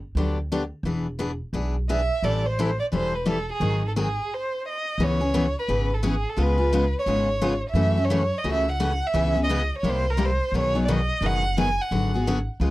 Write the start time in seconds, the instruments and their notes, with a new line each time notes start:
0.15 upright bass D2, steel-string acoustic guitar D3 F#3 B3 D4 G4
0.52 steel-string acoustic guitar D3 F#3 B3 D4 G4
0.83 upright bass E1, steel-string acoustic guitar E3 B3 D4 G#4
1.19 steel-string acoustic guitar E3 B3 D4 G#4
1.53 upright bass B1, steel-string acoustic guitar E3 B3 D4 G#4
1.89 steel-string acoustic guitar E3 B3 D4 G#4, violin E5
2.22 upright bass A1, steel-string acoustic guitar E3 G3 C4 E4 A4, violin D5
2.46 violin C5
2.59 steel-string acoustic guitar E3 G3 C4 E4 A4
2.80 violin D5
2.92 upright bass E1, steel-string acoustic guitar E3 G3 C4 E4 A4, violin C5
3.16 violin B4
3.25 steel-string acoustic guitar E3 G3 C4 E4 A4
3.30 violin A4
3.53 violin G#4
3.60 upright bass G#1, steel-string acoustic guitar D#3 F#3 C4 D#4 G#4
3.88 violin A4
3.96 steel-string acoustic guitar D#3 F#3 C4 D#4 G#4, violin G#4
4.34 violin C5
4.68 violin D#5
4.98 upright bass C#2, steel-string acoustic guitar C#3 E3 B3 C#4 G#4
5.03 violin C#5
5.21 steel-string acoustic guitar B3 C#4 G#4
5.34 steel-string acoustic guitar C#3 E3 B3 C#4 G#4
5.59 violin B4
5.68 upright bass G#1, steel-string acoustic guitar C#3 E3 B3 C#4 G#4
5.94 violin A4
6.03 steel-string acoustic guitar C#3 E3 B3 C#4 G#4
6.08 violin G#4
6.29 violin A4
6.37 upright bass C#2, steel-string acoustic guitar C#3 G#3 B3 F4 G#4
6.42 violin B4
6.58 steel-string acoustic guitar B3 F4 G#4
6.73 steel-string acoustic guitar C#3 G#3 B3 F4 G#4
6.99 violin C#5
7.06 upright bass G#1, steel-string acoustic guitar C#3 G#3 B3 F4 G#4
7.42 steel-string acoustic guitar C#3 G#3 B3 F4 G#4
7.70 upright bass F#2, violin E5
7.75 steel-string acoustic guitar C#3 E3 A3 C#4 F#4
7.97 steel-string acoustic guitar A3 C#4 F#4
8.04 violin C#5
8.10 steel-string acoustic guitar C#3 E3 A3 C#4 F#4
8.38 violin D#5
8.44 upright bass C#2, steel-string acoustic guitar C#3 E3 A3 C#4 F#4
8.53 violin E5
8.72 violin F#5
8.80 steel-string acoustic guitar C#3 E3 A3 C#4 F#4
9.07 violin E5
9.14 upright bass C#2, steel-string acoustic guitar C#3 E3 B3 C#4 G#4
9.35 steel-string acoustic guitar B3 C#4 G#4
9.43 violin D#5
9.49 steel-string acoustic guitar C#3 E3 B3 C#4 G#4
9.78 violin C#5
9.83 upright bass C2, steel-string acoustic guitar C3 G3 A#3 E4 G4
9.90 violin C5
10.10 violin A#4
10.17 steel-string acoustic guitar C3 G3 A#3 E4 G4
10.25 violin C5
10.52 upright bass B1, steel-string acoustic guitar B2 D#3 F#3 B3 D#4 G#4
10.58 violin C#5
10.75 steel-string acoustic guitar F#3 B3 D#4 G#4
10.85 steel-string acoustic guitar B2 D#3 F#3 B3, violin D5
10.89 steel-string acoustic guitar D#4 G#4, violin D#5
11.21 upright bass F#1, steel-string acoustic guitar B2 D#3 F#3 B3 D#4 G#4
11.26 violin F#5
11.57 steel-string acoustic guitar B2 D#3 F#3 B3 D#4 G#4, violin G#5
11.81 violin F#5
11.91 upright bass G#1, steel-string acoustic guitar D3 F#3 B3 F#4 G#4
12.14 steel-string acoustic guitar B3 F#4 G#4
12.27 steel-string acoustic guitar D3 F#3 B3 F#4 G#4
12.60 upright bass C#2, steel-string acoustic guitar C#3 G#3 B3 F4 G#4